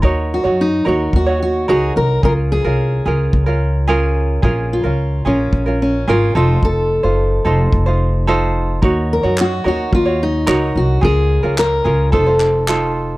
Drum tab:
CP |--------|--------|--------|--------|
BD |o---o---|o---o---|o---o---|o---o---|

CP |--x---x-|--x--xx-|
BD |o---o---|o---o---|